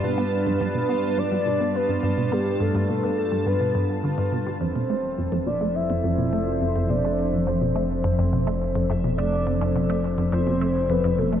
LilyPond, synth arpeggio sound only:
\new Staff \with { instrumentName = "Synth arpeggio sound" } { \clef bass \time 4/4 \key f \lydian \tempo 4 = 105 b,16 b16 r16 g,16 g,16 b,16 b16 r16 g,16 g,16 b,16 b16 r16 g,16 g,16 b,16 | b16 r16 g,16 g,16 b,16 b16 r16 g,16 g,16 b,16 g,16 r16 d16 g,16 b,16 g16 | f,16 b,16 a16 r16 f,16 f,16 b,16 a16 r16 f,16 f,16 b,16 a16 r16 f,16 f,16 | b,16 a16 r16 f,16 f,16 b,16 a16 r16 f,16 f,16 b,16 a16 r16 f,16 f,16 b,16 |
a16 r16 f,16 f,16 b,16 a16 r16 f,16 f,16 b,16 a16 r16 f,16 f,16 b,16 a16 | }